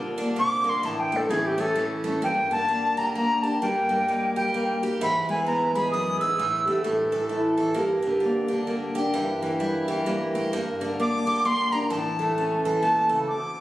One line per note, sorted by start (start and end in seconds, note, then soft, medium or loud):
0.00 1.29 D3 medium
0.00 0.35 F3 medium
0.00 0.85 G3 medium
0.00 0.20 A#3 medium
0.00 0.63 A#3 medium
0.00 0.83 F4 medium
0.18 0.82 A#3 medium
0.18 0.88 D4 medium
0.36 0.66 C3 medium
0.36 0.83 F3 medium
0.36 0.71 D6 loud
0.64 0.84 A#2 medium
0.64 0.88 A#3 medium
0.69 0.87 C6 medium
0.83 1.28 A2 medium
0.83 1.11 E3 medium
0.83 1.01 A5 medium
1.00 1.18 G5 medium
1.12 1.29 E3 medium
1.12 1.28 A3 medium
1.17 1.32 A4 medium
1.29 2.21 A2 medium
1.29 1.76 E3 medium
1.29 1.74 E3 medium
1.29 1.58 A3 medium
1.29 2.05 C#4 medium
1.29 2.21 E4 medium
1.29 1.48 G#4 medium
1.46 1.62 G4 loud
1.58 2.21 A3 medium
1.58 2.28 C#4 medium
1.58 1.84 A4 loud
1.76 2.27 E3 medium
1.76 2.20 E3 medium
2.04 2.22 A3 medium
2.04 2.21 C#4 medium
2.22 3.59 G2 medium
2.22 2.51 A#3 medium
2.22 2.49 G5 medium
2.51 2.96 D3 medium
2.51 3.14 A#3 medium
2.51 2.99 A5 loud
2.68 3.15 A#3 medium
2.68 3.66 D4 medium
2.97 3.61 D3 medium
2.97 3.42 G4 medium
2.97 3.13 A#5 medium
3.14 3.61 A#3 medium
3.14 3.60 A#3 medium
3.14 3.44 A#5 loud
3.42 3.60 D4 medium
3.42 3.66 G4 medium
3.42 3.60 A5 medium
3.62 4.97 G2 medium
3.62 3.89 G3 medium
3.62 3.88 A#3 medium
3.62 4.08 A#3 medium
3.62 4.82 G4 medium
3.62 4.31 G5 medium
3.89 4.36 G3 medium
3.89 4.53 A#3 medium
4.08 4.54 A#3 medium
4.08 5.05 D#4 medium
4.36 4.98 G3 medium
4.36 4.82 G4 medium
4.36 4.78 G5 medium
4.54 5.05 A#3 medium
4.54 4.98 A#3 medium
4.83 5.05 G4 medium
4.83 4.98 G4 medium
5.00 5.92 G#2 medium
5.00 6.38 E3 medium
5.00 5.27 B5 medium
5.29 5.74 G#3 medium
5.29 5.92 B3 medium
5.29 5.45 G#5 medium
5.47 6.36 B3 medium
5.47 6.44 E4 medium
5.47 5.72 A#5 medium
5.74 6.36 G#3 medium
5.74 6.20 G#4 medium
5.74 5.91 B5 medium
5.92 6.20 F#2 medium
5.92 6.44 B3 medium
5.92 6.17 D#6 loud
6.20 6.38 G#2 medium
6.20 6.44 G#4 medium
6.20 6.80 E6 medium
6.38 6.66 A2 medium
6.38 6.83 E3 medium
6.66 6.84 D3 medium
6.66 6.90 A3 medium
6.66 6.84 G4 medium
6.83 7.77 A2 medium
6.83 7.82 E3 medium
6.83 7.29 A4 medium
7.12 7.58 E3 medium
7.12 7.56 A4 medium
7.29 7.74 A3 medium
7.29 7.75 A3 medium
7.29 7.77 E4 medium
7.58 7.75 E3 medium
7.58 7.81 A4 medium
7.74 9.14 G2 medium
7.74 8.02 A#3 medium
7.74 8.68 G4 loud
8.02 8.67 A#3 medium
8.07 8.51 D3 medium
8.20 9.19 D4 medium
8.25 8.70 A#3 medium
8.48 8.95 G4 medium
8.53 9.15 D3 medium
8.67 9.42 A#3 medium
8.67 9.45 A#3 medium
8.95 9.13 D4 medium
8.95 9.88 G4 medium
9.14 10.51 G2 medium
9.14 10.52 E3 medium
9.42 9.88 E3 medium
9.42 10.05 A#3 medium
9.60 10.05 G3 medium
9.60 10.58 E4 medium
9.88 10.51 E3 medium
9.88 10.34 G4 medium
10.06 10.99 G3 medium
10.06 10.52 A#3 medium
10.35 10.53 A3 medium
10.35 10.58 G4 medium
10.53 11.89 G2 medium
10.53 10.80 A#3 medium
10.81 11.25 D3 medium
10.81 11.44 A#3 medium
11.00 11.44 A#3 medium
11.00 11.97 D4 medium
11.00 11.47 D6 loud
11.26 11.91 D3 medium
11.26 11.71 G4 medium
11.45 11.96 A#3 medium
11.45 11.89 A#3 medium
11.45 11.74 C6 loud
11.72 11.89 D4 medium
11.72 11.96 G4 medium
11.72 11.89 A#5 medium
11.90 12.82 A2 medium
11.90 13.29 E3 medium
11.90 12.60 A5 medium
12.19 12.65 E3 medium
12.19 12.81 A3 medium
12.38 13.27 A3 medium
12.38 13.35 C#4 medium
12.65 13.27 E3 medium
12.65 13.08 A4 medium
12.81 13.11 A#2 medium
12.81 13.34 A3 medium
12.81 13.16 A5 loud
13.09 13.29 C#3 medium
13.09 13.34 A4 medium
13.28 13.60 D2 medium
13.28 13.60 D6 medium